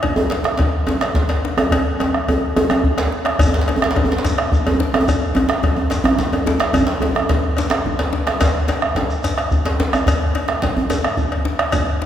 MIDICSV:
0, 0, Header, 1, 5, 480
1, 0, Start_track
1, 0, Tempo, 279720
1, 58, Time_signature, 12, 3, 24, 8
1, 10617, Tempo, 277008
1, 20788, End_track
2, 0, Start_track
2, 0, Title_t, "Bombo"
2, 59, Note_on_c, 9, 43, 100
2, 230, Note_off_c, 9, 43, 0
2, 306, Note_on_c, 9, 37, 31
2, 478, Note_off_c, 9, 37, 0
2, 776, Note_on_c, 9, 37, 82
2, 947, Note_off_c, 9, 37, 0
2, 1016, Note_on_c, 9, 43, 92
2, 1188, Note_off_c, 9, 43, 0
2, 1737, Note_on_c, 9, 37, 71
2, 1909, Note_off_c, 9, 37, 0
2, 1964, Note_on_c, 9, 43, 95
2, 2136, Note_off_c, 9, 43, 0
2, 2706, Note_on_c, 9, 37, 81
2, 2878, Note_off_c, 9, 37, 0
2, 2936, Note_on_c, 9, 43, 95
2, 3108, Note_off_c, 9, 43, 0
2, 3426, Note_on_c, 9, 37, 33
2, 3597, Note_off_c, 9, 37, 0
2, 3680, Note_on_c, 9, 37, 69
2, 3851, Note_off_c, 9, 37, 0
2, 3913, Note_on_c, 9, 43, 77
2, 4085, Note_off_c, 9, 43, 0
2, 4631, Note_on_c, 9, 37, 72
2, 4803, Note_off_c, 9, 37, 0
2, 4864, Note_on_c, 9, 43, 87
2, 5036, Note_off_c, 9, 43, 0
2, 5127, Note_on_c, 9, 37, 29
2, 5298, Note_off_c, 9, 37, 0
2, 5362, Note_on_c, 9, 37, 28
2, 5533, Note_off_c, 9, 37, 0
2, 5591, Note_on_c, 9, 37, 76
2, 5763, Note_off_c, 9, 37, 0
2, 5816, Note_on_c, 9, 43, 107
2, 5988, Note_off_c, 9, 43, 0
2, 6074, Note_on_c, 9, 37, 36
2, 6245, Note_off_c, 9, 37, 0
2, 6559, Note_on_c, 9, 37, 93
2, 6731, Note_off_c, 9, 37, 0
2, 6801, Note_on_c, 9, 43, 96
2, 6973, Note_off_c, 9, 43, 0
2, 7524, Note_on_c, 9, 37, 73
2, 7696, Note_off_c, 9, 37, 0
2, 7751, Note_on_c, 9, 43, 93
2, 7923, Note_off_c, 9, 43, 0
2, 8479, Note_on_c, 9, 37, 80
2, 8651, Note_off_c, 9, 37, 0
2, 8712, Note_on_c, 9, 43, 98
2, 8884, Note_off_c, 9, 43, 0
2, 8966, Note_on_c, 9, 37, 31
2, 9138, Note_off_c, 9, 37, 0
2, 9431, Note_on_c, 9, 37, 82
2, 9602, Note_off_c, 9, 37, 0
2, 9670, Note_on_c, 9, 43, 91
2, 9842, Note_off_c, 9, 43, 0
2, 10389, Note_on_c, 9, 37, 80
2, 10560, Note_off_c, 9, 37, 0
2, 10612, Note_on_c, 9, 43, 104
2, 10785, Note_off_c, 9, 43, 0
2, 11337, Note_on_c, 9, 37, 90
2, 11511, Note_off_c, 9, 37, 0
2, 11581, Note_on_c, 9, 43, 115
2, 11755, Note_off_c, 9, 43, 0
2, 11830, Note_on_c, 9, 37, 30
2, 12003, Note_off_c, 9, 37, 0
2, 12305, Note_on_c, 9, 37, 81
2, 12478, Note_off_c, 9, 37, 0
2, 12537, Note_on_c, 9, 43, 94
2, 12710, Note_off_c, 9, 43, 0
2, 13258, Note_on_c, 9, 37, 76
2, 13431, Note_off_c, 9, 37, 0
2, 13512, Note_on_c, 9, 43, 83
2, 13685, Note_off_c, 9, 43, 0
2, 14232, Note_on_c, 9, 37, 76
2, 14405, Note_off_c, 9, 37, 0
2, 14474, Note_on_c, 9, 43, 92
2, 14648, Note_off_c, 9, 43, 0
2, 14708, Note_on_c, 9, 37, 26
2, 14882, Note_off_c, 9, 37, 0
2, 15184, Note_on_c, 9, 37, 79
2, 15357, Note_off_c, 9, 37, 0
2, 15404, Note_on_c, 9, 37, 27
2, 15404, Note_on_c, 9, 43, 85
2, 15577, Note_off_c, 9, 37, 0
2, 15577, Note_off_c, 9, 43, 0
2, 15657, Note_on_c, 9, 37, 31
2, 15830, Note_off_c, 9, 37, 0
2, 16143, Note_on_c, 9, 37, 70
2, 16316, Note_off_c, 9, 37, 0
2, 16381, Note_on_c, 9, 43, 93
2, 16554, Note_off_c, 9, 43, 0
2, 17105, Note_on_c, 9, 37, 82
2, 17278, Note_off_c, 9, 37, 0
2, 17336, Note_on_c, 9, 43, 93
2, 17509, Note_off_c, 9, 43, 0
2, 17599, Note_on_c, 9, 37, 30
2, 17772, Note_off_c, 9, 37, 0
2, 18066, Note_on_c, 9, 37, 78
2, 18239, Note_off_c, 9, 37, 0
2, 18306, Note_on_c, 9, 43, 93
2, 18480, Note_off_c, 9, 43, 0
2, 19035, Note_on_c, 9, 37, 81
2, 19208, Note_off_c, 9, 37, 0
2, 19258, Note_on_c, 9, 43, 96
2, 19431, Note_off_c, 9, 43, 0
2, 19982, Note_on_c, 9, 37, 87
2, 20155, Note_off_c, 9, 37, 0
2, 20224, Note_on_c, 9, 43, 110
2, 20398, Note_off_c, 9, 43, 0
2, 20448, Note_on_c, 9, 37, 33
2, 20621, Note_off_c, 9, 37, 0
2, 20788, End_track
3, 0, Start_track
3, 0, Title_t, "Djembe"
3, 63, Note_on_c, 9, 64, 80
3, 234, Note_off_c, 9, 64, 0
3, 278, Note_on_c, 9, 63, 100
3, 308, Note_on_c, 9, 62, 23
3, 449, Note_off_c, 9, 63, 0
3, 480, Note_off_c, 9, 62, 0
3, 513, Note_on_c, 9, 62, 72
3, 549, Note_off_c, 9, 62, 0
3, 549, Note_on_c, 9, 62, 71
3, 721, Note_off_c, 9, 62, 0
3, 760, Note_on_c, 9, 62, 68
3, 791, Note_off_c, 9, 62, 0
3, 791, Note_on_c, 9, 62, 24
3, 962, Note_off_c, 9, 62, 0
3, 987, Note_on_c, 9, 62, 72
3, 1032, Note_on_c, 9, 64, 67
3, 1159, Note_off_c, 9, 62, 0
3, 1203, Note_off_c, 9, 64, 0
3, 1284, Note_on_c, 9, 62, 22
3, 1455, Note_off_c, 9, 62, 0
3, 1488, Note_on_c, 9, 63, 95
3, 1519, Note_off_c, 9, 63, 0
3, 1519, Note_on_c, 9, 62, 74
3, 1519, Note_on_c, 9, 63, 70
3, 1691, Note_off_c, 9, 62, 0
3, 1691, Note_off_c, 9, 63, 0
3, 1733, Note_on_c, 9, 62, 80
3, 1905, Note_off_c, 9, 62, 0
3, 1975, Note_on_c, 9, 62, 80
3, 2003, Note_on_c, 9, 64, 59
3, 2146, Note_off_c, 9, 62, 0
3, 2175, Note_off_c, 9, 64, 0
3, 2213, Note_on_c, 9, 62, 75
3, 2385, Note_off_c, 9, 62, 0
3, 2485, Note_on_c, 9, 62, 73
3, 2485, Note_on_c, 9, 63, 72
3, 2657, Note_off_c, 9, 62, 0
3, 2657, Note_off_c, 9, 63, 0
3, 2702, Note_on_c, 9, 63, 89
3, 2873, Note_off_c, 9, 63, 0
3, 2952, Note_on_c, 9, 63, 93
3, 2966, Note_on_c, 9, 62, 21
3, 2966, Note_on_c, 9, 64, 72
3, 3123, Note_off_c, 9, 63, 0
3, 3138, Note_off_c, 9, 62, 0
3, 3138, Note_off_c, 9, 64, 0
3, 3434, Note_on_c, 9, 63, 93
3, 3453, Note_off_c, 9, 63, 0
3, 3453, Note_on_c, 9, 62, 64
3, 3453, Note_on_c, 9, 63, 56
3, 3625, Note_off_c, 9, 62, 0
3, 3625, Note_off_c, 9, 63, 0
3, 3700, Note_on_c, 9, 62, 22
3, 3872, Note_off_c, 9, 62, 0
3, 3930, Note_on_c, 9, 63, 85
3, 4101, Note_off_c, 9, 63, 0
3, 4177, Note_on_c, 9, 62, 20
3, 4349, Note_off_c, 9, 62, 0
3, 4401, Note_on_c, 9, 63, 101
3, 4408, Note_off_c, 9, 63, 0
3, 4408, Note_on_c, 9, 62, 65
3, 4408, Note_on_c, 9, 63, 71
3, 4580, Note_off_c, 9, 62, 0
3, 4580, Note_off_c, 9, 63, 0
3, 4630, Note_on_c, 9, 63, 106
3, 4665, Note_on_c, 9, 62, 21
3, 4802, Note_off_c, 9, 63, 0
3, 4836, Note_off_c, 9, 62, 0
3, 4883, Note_on_c, 9, 64, 56
3, 5054, Note_off_c, 9, 64, 0
3, 5112, Note_on_c, 9, 64, 41
3, 5118, Note_on_c, 9, 62, 98
3, 5284, Note_off_c, 9, 64, 0
3, 5289, Note_off_c, 9, 62, 0
3, 5361, Note_on_c, 9, 62, 51
3, 5532, Note_off_c, 9, 62, 0
3, 5600, Note_on_c, 9, 62, 51
3, 5772, Note_off_c, 9, 62, 0
3, 5832, Note_on_c, 9, 64, 87
3, 5956, Note_on_c, 9, 63, 86
3, 6004, Note_off_c, 9, 64, 0
3, 6077, Note_on_c, 9, 62, 88
3, 6084, Note_off_c, 9, 62, 0
3, 6084, Note_on_c, 9, 62, 22
3, 6127, Note_off_c, 9, 63, 0
3, 6202, Note_off_c, 9, 62, 0
3, 6202, Note_on_c, 9, 62, 72
3, 6330, Note_off_c, 9, 62, 0
3, 6330, Note_on_c, 9, 62, 67
3, 6330, Note_on_c, 9, 63, 71
3, 6458, Note_off_c, 9, 63, 0
3, 6458, Note_on_c, 9, 63, 83
3, 6501, Note_off_c, 9, 62, 0
3, 6562, Note_on_c, 9, 62, 26
3, 6585, Note_off_c, 9, 62, 0
3, 6585, Note_on_c, 9, 62, 85
3, 6629, Note_off_c, 9, 63, 0
3, 6704, Note_off_c, 9, 62, 0
3, 6704, Note_on_c, 9, 62, 87
3, 6810, Note_on_c, 9, 64, 82
3, 6876, Note_off_c, 9, 62, 0
3, 6942, Note_on_c, 9, 63, 85
3, 6982, Note_off_c, 9, 64, 0
3, 7036, Note_on_c, 9, 62, 22
3, 7067, Note_off_c, 9, 62, 0
3, 7067, Note_on_c, 9, 62, 76
3, 7114, Note_off_c, 9, 63, 0
3, 7178, Note_off_c, 9, 62, 0
3, 7178, Note_on_c, 9, 62, 79
3, 7287, Note_off_c, 9, 62, 0
3, 7287, Note_on_c, 9, 62, 84
3, 7287, Note_on_c, 9, 63, 74
3, 7458, Note_off_c, 9, 62, 0
3, 7458, Note_off_c, 9, 63, 0
3, 7764, Note_on_c, 9, 64, 70
3, 7936, Note_off_c, 9, 64, 0
3, 8008, Note_on_c, 9, 63, 108
3, 8124, Note_off_c, 9, 63, 0
3, 8124, Note_on_c, 9, 63, 68
3, 8236, Note_off_c, 9, 63, 0
3, 8236, Note_on_c, 9, 62, 82
3, 8236, Note_on_c, 9, 63, 85
3, 8408, Note_off_c, 9, 62, 0
3, 8408, Note_off_c, 9, 63, 0
3, 8477, Note_on_c, 9, 63, 97
3, 8595, Note_off_c, 9, 63, 0
3, 8595, Note_on_c, 9, 63, 75
3, 8722, Note_on_c, 9, 64, 80
3, 8766, Note_off_c, 9, 63, 0
3, 8894, Note_off_c, 9, 64, 0
3, 8942, Note_on_c, 9, 62, 22
3, 9113, Note_off_c, 9, 62, 0
3, 9177, Note_on_c, 9, 62, 66
3, 9177, Note_on_c, 9, 63, 69
3, 9186, Note_on_c, 9, 64, 100
3, 9349, Note_off_c, 9, 62, 0
3, 9349, Note_off_c, 9, 63, 0
3, 9358, Note_off_c, 9, 64, 0
3, 9415, Note_on_c, 9, 62, 78
3, 9431, Note_off_c, 9, 62, 0
3, 9431, Note_on_c, 9, 62, 25
3, 9602, Note_off_c, 9, 62, 0
3, 9662, Note_on_c, 9, 63, 74
3, 9665, Note_on_c, 9, 64, 72
3, 9834, Note_off_c, 9, 63, 0
3, 9837, Note_off_c, 9, 64, 0
3, 9892, Note_on_c, 9, 63, 78
3, 10063, Note_off_c, 9, 63, 0
3, 10125, Note_on_c, 9, 62, 76
3, 10151, Note_off_c, 9, 62, 0
3, 10151, Note_on_c, 9, 62, 83
3, 10151, Note_on_c, 9, 63, 82
3, 10323, Note_off_c, 9, 62, 0
3, 10323, Note_off_c, 9, 63, 0
3, 10364, Note_on_c, 9, 64, 115
3, 10536, Note_off_c, 9, 64, 0
3, 10614, Note_on_c, 9, 62, 91
3, 10615, Note_on_c, 9, 64, 66
3, 10787, Note_off_c, 9, 62, 0
3, 10788, Note_off_c, 9, 64, 0
3, 10857, Note_on_c, 9, 63, 89
3, 11030, Note_off_c, 9, 63, 0
3, 11095, Note_on_c, 9, 63, 96
3, 11109, Note_off_c, 9, 63, 0
3, 11109, Note_on_c, 9, 62, 99
3, 11109, Note_on_c, 9, 63, 99
3, 11282, Note_off_c, 9, 62, 0
3, 11282, Note_off_c, 9, 63, 0
3, 11327, Note_on_c, 9, 62, 79
3, 11500, Note_off_c, 9, 62, 0
3, 11565, Note_on_c, 9, 64, 102
3, 11584, Note_off_c, 9, 64, 0
3, 11584, Note_on_c, 9, 64, 96
3, 11757, Note_off_c, 9, 64, 0
3, 11795, Note_on_c, 9, 62, 85
3, 11835, Note_off_c, 9, 62, 0
3, 11835, Note_on_c, 9, 62, 25
3, 12008, Note_off_c, 9, 62, 0
3, 12039, Note_on_c, 9, 63, 80
3, 12068, Note_off_c, 9, 63, 0
3, 12068, Note_on_c, 9, 62, 79
3, 12068, Note_on_c, 9, 63, 77
3, 12241, Note_off_c, 9, 62, 0
3, 12241, Note_off_c, 9, 63, 0
3, 12289, Note_on_c, 9, 63, 70
3, 12304, Note_on_c, 9, 62, 30
3, 12462, Note_off_c, 9, 63, 0
3, 12477, Note_off_c, 9, 62, 0
3, 12533, Note_on_c, 9, 62, 81
3, 12555, Note_on_c, 9, 64, 78
3, 12706, Note_off_c, 9, 62, 0
3, 12728, Note_off_c, 9, 64, 0
3, 12792, Note_on_c, 9, 62, 26
3, 12965, Note_off_c, 9, 62, 0
3, 13036, Note_on_c, 9, 62, 93
3, 13036, Note_on_c, 9, 63, 86
3, 13209, Note_off_c, 9, 62, 0
3, 13209, Note_off_c, 9, 63, 0
3, 13238, Note_on_c, 9, 62, 111
3, 13411, Note_off_c, 9, 62, 0
3, 13516, Note_on_c, 9, 64, 74
3, 13689, Note_off_c, 9, 64, 0
3, 13742, Note_on_c, 9, 62, 86
3, 13916, Note_off_c, 9, 62, 0
3, 13978, Note_on_c, 9, 62, 84
3, 13978, Note_on_c, 9, 63, 92
3, 14152, Note_off_c, 9, 62, 0
3, 14152, Note_off_c, 9, 63, 0
3, 14228, Note_on_c, 9, 62, 81
3, 14401, Note_off_c, 9, 62, 0
3, 14461, Note_on_c, 9, 62, 103
3, 14469, Note_off_c, 9, 62, 0
3, 14469, Note_on_c, 9, 62, 27
3, 14469, Note_on_c, 9, 64, 93
3, 14643, Note_off_c, 9, 62, 0
3, 14643, Note_off_c, 9, 64, 0
3, 14938, Note_on_c, 9, 62, 73
3, 14946, Note_off_c, 9, 62, 0
3, 14946, Note_on_c, 9, 62, 80
3, 14946, Note_on_c, 9, 63, 80
3, 15119, Note_off_c, 9, 62, 0
3, 15119, Note_off_c, 9, 63, 0
3, 15195, Note_on_c, 9, 62, 27
3, 15369, Note_off_c, 9, 62, 0
3, 15423, Note_on_c, 9, 62, 80
3, 15433, Note_on_c, 9, 64, 73
3, 15597, Note_off_c, 9, 62, 0
3, 15606, Note_off_c, 9, 64, 0
3, 15681, Note_on_c, 9, 62, 23
3, 15854, Note_off_c, 9, 62, 0
3, 15914, Note_on_c, 9, 62, 78
3, 15914, Note_on_c, 9, 63, 74
3, 16088, Note_off_c, 9, 62, 0
3, 16088, Note_off_c, 9, 63, 0
3, 16399, Note_on_c, 9, 64, 64
3, 16572, Note_off_c, 9, 64, 0
3, 16626, Note_on_c, 9, 62, 84
3, 16799, Note_off_c, 9, 62, 0
3, 16873, Note_on_c, 9, 62, 92
3, 16874, Note_off_c, 9, 62, 0
3, 16874, Note_on_c, 9, 62, 78
3, 16874, Note_on_c, 9, 63, 82
3, 17047, Note_off_c, 9, 62, 0
3, 17047, Note_off_c, 9, 63, 0
3, 17110, Note_on_c, 9, 64, 68
3, 17123, Note_on_c, 9, 62, 21
3, 17283, Note_off_c, 9, 64, 0
3, 17297, Note_off_c, 9, 62, 0
3, 17345, Note_on_c, 9, 62, 70
3, 17354, Note_on_c, 9, 64, 71
3, 17518, Note_off_c, 9, 62, 0
3, 17527, Note_off_c, 9, 64, 0
3, 17593, Note_on_c, 9, 62, 21
3, 17766, Note_off_c, 9, 62, 0
3, 17829, Note_on_c, 9, 62, 68
3, 17829, Note_on_c, 9, 63, 61
3, 18002, Note_off_c, 9, 62, 0
3, 18002, Note_off_c, 9, 63, 0
3, 18057, Note_on_c, 9, 62, 68
3, 18068, Note_off_c, 9, 62, 0
3, 18068, Note_on_c, 9, 62, 22
3, 18241, Note_off_c, 9, 62, 0
3, 18301, Note_on_c, 9, 62, 83
3, 18311, Note_on_c, 9, 64, 65
3, 18474, Note_off_c, 9, 62, 0
3, 18484, Note_off_c, 9, 64, 0
3, 18551, Note_on_c, 9, 62, 19
3, 18551, Note_on_c, 9, 64, 80
3, 18724, Note_off_c, 9, 64, 0
3, 18725, Note_off_c, 9, 62, 0
3, 18779, Note_on_c, 9, 62, 72
3, 18779, Note_on_c, 9, 63, 74
3, 18782, Note_off_c, 9, 62, 0
3, 18782, Note_on_c, 9, 62, 81
3, 18953, Note_off_c, 9, 63, 0
3, 18955, Note_off_c, 9, 62, 0
3, 19258, Note_on_c, 9, 64, 65
3, 19431, Note_off_c, 9, 64, 0
3, 19739, Note_on_c, 9, 62, 82
3, 19739, Note_on_c, 9, 63, 73
3, 19913, Note_off_c, 9, 62, 0
3, 19913, Note_off_c, 9, 63, 0
3, 20224, Note_on_c, 9, 64, 79
3, 20397, Note_off_c, 9, 64, 0
3, 20470, Note_on_c, 9, 62, 22
3, 20643, Note_off_c, 9, 62, 0
3, 20718, Note_on_c, 9, 62, 75
3, 20718, Note_on_c, 9, 63, 70
3, 20788, Note_off_c, 9, 62, 0
3, 20788, Note_off_c, 9, 63, 0
3, 20788, End_track
4, 0, Start_track
4, 0, Title_t, "Shekere"
4, 5848, Note_on_c, 9, 82, 54
4, 6020, Note_off_c, 9, 82, 0
4, 7294, Note_on_c, 9, 82, 64
4, 7466, Note_off_c, 9, 82, 0
4, 7777, Note_on_c, 9, 82, 21
4, 7949, Note_off_c, 9, 82, 0
4, 8724, Note_on_c, 9, 82, 60
4, 8896, Note_off_c, 9, 82, 0
4, 10154, Note_on_c, 9, 82, 58
4, 10326, Note_off_c, 9, 82, 0
4, 10634, Note_on_c, 9, 82, 19
4, 10807, Note_off_c, 9, 82, 0
4, 11588, Note_on_c, 9, 82, 44
4, 11761, Note_off_c, 9, 82, 0
4, 13029, Note_on_c, 9, 82, 49
4, 13202, Note_off_c, 9, 82, 0
4, 14463, Note_on_c, 9, 82, 51
4, 14637, Note_off_c, 9, 82, 0
4, 14951, Note_on_c, 9, 82, 15
4, 15124, Note_off_c, 9, 82, 0
4, 15668, Note_on_c, 9, 82, 19
4, 15841, Note_off_c, 9, 82, 0
4, 15903, Note_on_c, 9, 82, 61
4, 16076, Note_off_c, 9, 82, 0
4, 16376, Note_on_c, 9, 82, 20
4, 16549, Note_off_c, 9, 82, 0
4, 17116, Note_on_c, 9, 82, 17
4, 17289, Note_off_c, 9, 82, 0
4, 17356, Note_on_c, 9, 82, 54
4, 17530, Note_off_c, 9, 82, 0
4, 18794, Note_on_c, 9, 82, 54
4, 18968, Note_off_c, 9, 82, 0
4, 19268, Note_on_c, 9, 82, 18
4, 19441, Note_off_c, 9, 82, 0
4, 20209, Note_on_c, 9, 82, 54
4, 20383, Note_off_c, 9, 82, 0
4, 20788, End_track
5, 0, Start_track
5, 0, Title_t, "Drums"
5, 45, Note_on_c, 9, 56, 57
5, 217, Note_off_c, 9, 56, 0
5, 532, Note_on_c, 9, 56, 40
5, 704, Note_off_c, 9, 56, 0
5, 1006, Note_on_c, 9, 56, 46
5, 1178, Note_off_c, 9, 56, 0
5, 1492, Note_on_c, 9, 56, 40
5, 1664, Note_off_c, 9, 56, 0
5, 1755, Note_on_c, 9, 56, 46
5, 1926, Note_off_c, 9, 56, 0
5, 2220, Note_on_c, 9, 56, 47
5, 2391, Note_off_c, 9, 56, 0
5, 2714, Note_on_c, 9, 56, 53
5, 2885, Note_off_c, 9, 56, 0
5, 2955, Note_on_c, 9, 56, 65
5, 3127, Note_off_c, 9, 56, 0
5, 3436, Note_on_c, 9, 56, 47
5, 3607, Note_off_c, 9, 56, 0
5, 3920, Note_on_c, 9, 56, 49
5, 4092, Note_off_c, 9, 56, 0
5, 4401, Note_on_c, 9, 56, 45
5, 4572, Note_off_c, 9, 56, 0
5, 4648, Note_on_c, 9, 56, 48
5, 4820, Note_off_c, 9, 56, 0
5, 5108, Note_on_c, 9, 56, 49
5, 5279, Note_off_c, 9, 56, 0
5, 5577, Note_on_c, 9, 56, 51
5, 5749, Note_off_c, 9, 56, 0
5, 5823, Note_on_c, 9, 56, 62
5, 5995, Note_off_c, 9, 56, 0
5, 6312, Note_on_c, 9, 56, 49
5, 6483, Note_off_c, 9, 56, 0
5, 6800, Note_on_c, 9, 56, 49
5, 6972, Note_off_c, 9, 56, 0
5, 7283, Note_on_c, 9, 56, 46
5, 7455, Note_off_c, 9, 56, 0
5, 7517, Note_on_c, 9, 56, 45
5, 7689, Note_off_c, 9, 56, 0
5, 8005, Note_on_c, 9, 56, 46
5, 8177, Note_off_c, 9, 56, 0
5, 8485, Note_on_c, 9, 56, 47
5, 8657, Note_off_c, 9, 56, 0
5, 8730, Note_on_c, 9, 56, 56
5, 8902, Note_off_c, 9, 56, 0
5, 9205, Note_on_c, 9, 56, 49
5, 9377, Note_off_c, 9, 56, 0
5, 9672, Note_on_c, 9, 56, 51
5, 9844, Note_off_c, 9, 56, 0
5, 10138, Note_on_c, 9, 56, 48
5, 10309, Note_off_c, 9, 56, 0
5, 10384, Note_on_c, 9, 56, 44
5, 10556, Note_off_c, 9, 56, 0
5, 10869, Note_on_c, 9, 56, 45
5, 11042, Note_off_c, 9, 56, 0
5, 11341, Note_on_c, 9, 56, 46
5, 11514, Note_off_c, 9, 56, 0
5, 11574, Note_on_c, 9, 56, 64
5, 11748, Note_off_c, 9, 56, 0
5, 12057, Note_on_c, 9, 56, 45
5, 12230, Note_off_c, 9, 56, 0
5, 12535, Note_on_c, 9, 56, 49
5, 12708, Note_off_c, 9, 56, 0
5, 13007, Note_on_c, 9, 56, 44
5, 13180, Note_off_c, 9, 56, 0
5, 13742, Note_on_c, 9, 56, 45
5, 13916, Note_off_c, 9, 56, 0
5, 14221, Note_on_c, 9, 56, 52
5, 14395, Note_off_c, 9, 56, 0
5, 14463, Note_on_c, 9, 56, 64
5, 14636, Note_off_c, 9, 56, 0
5, 14955, Note_on_c, 9, 56, 54
5, 15128, Note_off_c, 9, 56, 0
5, 15426, Note_on_c, 9, 56, 46
5, 15599, Note_off_c, 9, 56, 0
5, 15910, Note_on_c, 9, 56, 51
5, 16083, Note_off_c, 9, 56, 0
5, 16153, Note_on_c, 9, 56, 52
5, 16326, Note_off_c, 9, 56, 0
5, 16637, Note_on_c, 9, 56, 50
5, 16810, Note_off_c, 9, 56, 0
5, 17112, Note_on_c, 9, 56, 52
5, 17285, Note_off_c, 9, 56, 0
5, 17361, Note_on_c, 9, 56, 71
5, 17534, Note_off_c, 9, 56, 0
5, 17839, Note_on_c, 9, 56, 54
5, 18012, Note_off_c, 9, 56, 0
5, 18323, Note_on_c, 9, 56, 48
5, 18496, Note_off_c, 9, 56, 0
5, 18786, Note_on_c, 9, 56, 49
5, 18959, Note_off_c, 9, 56, 0
5, 19032, Note_on_c, 9, 56, 50
5, 19206, Note_off_c, 9, 56, 0
5, 19510, Note_on_c, 9, 56, 45
5, 19683, Note_off_c, 9, 56, 0
5, 19982, Note_on_c, 9, 56, 52
5, 20155, Note_off_c, 9, 56, 0
5, 20211, Note_on_c, 9, 56, 62
5, 20384, Note_off_c, 9, 56, 0
5, 20788, End_track
0, 0, End_of_file